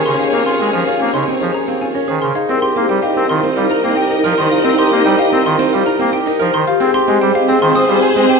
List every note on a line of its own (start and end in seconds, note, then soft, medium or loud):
0.00 2.34 D#2 medium
0.00 2.31 G#4 medium
0.00 2.31 C#5 medium
0.05 0.16 C#3 medium
0.05 0.23 A#4 medium
0.05 0.23 C6 medium
0.13 0.32 C#4 medium
0.19 0.37 D#4 medium
0.19 0.37 G#4 medium
0.19 0.37 F5 medium
0.32 0.43 A#3 medium
0.32 0.50 C4 medium
0.32 0.50 A#4 medium
0.40 0.60 C#4 medium
0.46 0.64 F4 medium
0.46 0.64 C6 medium
0.60 0.70 G#3 medium
0.60 0.77 C4 medium
0.60 0.77 G#4 medium
0.68 0.87 C#4 medium
0.73 0.84 F3 medium
0.73 0.91 A#4 medium
0.73 0.91 G#5 medium
0.87 1.04 F4 medium
0.87 1.04 C#5 medium
0.87 1.04 F5 medium
0.95 1.15 C#4 medium
1.00 1.11 A#3 medium
1.00 1.18 C4 medium
1.00 1.18 A#4 medium
1.14 1.24 C#3 medium
1.14 1.31 D#4 medium
1.14 1.31 C6 medium
1.23 1.43 C#4 medium
1.28 1.45 C4 medium
1.28 1.45 C5 medium
1.41 1.51 F3 medium
1.41 1.58 D#4 medium
1.41 1.58 G#4 medium
1.52 1.71 C#4 medium
1.52 1.72 G#4 medium
1.52 1.72 A#5 medium
1.68 1.85 C4 medium
1.68 1.85 F5 medium
1.79 1.99 C#4 soft
1.79 1.99 F4 medium
1.79 1.99 G#5 medium
1.95 2.12 C#4 medium
1.95 2.12 A#4 medium
2.07 2.19 D#3 medium
2.07 2.27 C#4 soft
2.07 2.26 G#4 medium
2.07 2.26 C5 medium
2.21 2.32 C#3 medium
2.21 2.39 A#4 medium
2.21 2.39 C6 medium
2.35 2.53 D#4 medium
2.35 2.53 G#4 medium
2.35 2.53 F5 medium
2.48 6.67 C2 medium
2.48 2.66 C4 medium
2.48 2.59 C4 medium
2.48 2.68 D#4 soft
2.48 6.64 A#4 medium
2.48 2.66 A#4 medium
2.48 6.64 D#5 medium
2.62 2.80 G4 medium
2.62 2.80 C6 medium
2.76 2.86 A#3 medium
2.76 2.93 C4 medium
2.76 2.96 D#4 medium
2.76 2.94 G4 medium
2.89 3.00 G3 medium
2.89 3.07 C5 medium
2.89 3.07 G5 medium
3.02 3.24 D#4 medium
3.02 3.20 G4 medium
3.02 3.20 D#5 medium
3.02 3.20 F5 medium
3.16 3.26 C4 medium
3.16 3.34 C4 medium
3.16 3.34 A#4 medium
3.29 3.40 D#3 medium
3.29 3.52 D#4 medium
3.29 3.47 F4 medium
3.29 3.47 C6 medium
3.43 3.61 C4 medium
3.43 3.61 C5 medium
3.56 3.67 G3 medium
3.56 3.80 D#4 medium
3.56 3.74 F4 medium
3.56 3.74 G4 medium
3.70 3.88 A#4 medium
3.70 3.88 A#5 medium
3.83 3.94 A#3 medium
3.83 4.01 C4 medium
3.83 4.01 G5 medium
3.88 4.07 D#4 medium
3.96 4.15 G4 medium
3.96 4.15 G5 medium
4.10 4.28 D#4 medium
4.10 4.28 A#4 loud
4.16 4.35 D#4 medium
4.24 4.34 F3 medium
4.24 4.42 A#4 medium
4.24 4.42 C5 medium
4.37 4.48 D#3 medium
4.37 4.55 C5 medium
4.37 4.55 C6 medium
4.44 4.63 D#4 medium
4.51 4.69 F4 medium
4.51 4.69 G4 medium
4.51 4.69 F5 medium
4.64 4.75 C4 medium
4.64 4.82 C4 medium
4.64 4.82 A#4 medium
4.71 4.91 D#4 medium
4.78 4.96 G4 medium
4.78 4.96 C6 medium
4.91 5.02 A#3 medium
4.91 5.09 C4 medium
4.91 5.09 G4 medium
4.99 5.19 D#4 medium
5.05 5.15 G3 loud
5.05 5.23 C5 medium
5.05 5.23 G5 medium
5.18 5.36 G4 medium
5.18 5.37 D#5 medium
5.18 5.36 F5 medium
5.27 5.47 D#4 medium
5.32 5.50 C4 medium
5.32 5.43 C4 medium
5.32 5.50 A#4 medium
5.46 5.56 D#3 loud
5.46 5.63 F4 medium
5.46 5.64 C6 medium
5.55 5.77 C4 loud
5.55 5.75 D#4 medium
5.60 5.77 C5 medium
5.72 5.83 G3 medium
5.72 5.90 F4 medium
5.72 5.91 G4 medium
5.84 6.03 D#4 medium
5.84 6.04 A#4 medium
5.84 6.04 A#5 medium
5.99 6.10 A#3 medium
5.99 6.17 C4 medium
5.99 6.18 G5 medium
6.11 6.31 D#4 medium
6.11 6.31 G4 medium
6.11 6.31 G5 medium
6.26 6.44 D#4 medium
6.26 6.45 A#4 loud
6.39 6.51 F3 medium
6.39 6.59 D#4 soft
6.39 6.58 A#4 loud
6.39 6.58 C5 medium
6.53 6.64 D#3 medium
6.53 6.71 C5 medium
6.53 6.72 C6 medium
6.67 6.85 F4 medium
6.67 6.85 G4 medium
6.67 6.85 F5 medium
6.80 8.40 G#2 medium
6.80 6.98 C4 loud
6.80 6.91 C4 loud
6.80 7.01 C4 soft
6.80 8.40 G#4 medium
6.80 6.99 G#4 loud
6.80 8.40 C5 loud
6.94 7.12 G4 loud
6.94 7.12 C6 medium
7.08 7.18 G#3 medium
7.08 7.26 C4 medium
7.08 7.28 C4 medium
7.08 7.26 G4 medium
7.21 7.32 G3 loud
7.21 7.39 C5 medium
7.21 7.39 G5 medium
7.35 7.57 C4 medium
7.35 7.53 G4 loud
7.35 7.53 D#5 medium
7.35 7.53 F5 medium
7.48 7.66 C4 medium
7.48 7.59 C4 medium
7.48 7.66 G#4 medium
7.62 7.72 D#3 loud
7.62 7.84 C4 medium
7.62 7.80 F4 medium
7.62 7.80 C6 medium
7.75 7.93 C4 loud
7.75 7.93 C5 medium
7.75 7.93 D#6 medium
7.89 7.99 G3 medium
7.89 8.12 C4 medium
7.89 8.07 F4 medium
7.89 8.07 G4 medium
8.02 8.20 G#4 medium
8.02 8.20 G#5 medium
8.16 8.26 G#3 medium
8.16 8.34 C4 medium
8.16 8.40 C4 medium
8.16 8.34 G5 medium
8.29 8.40 G4 medium
8.29 8.40 G5 medium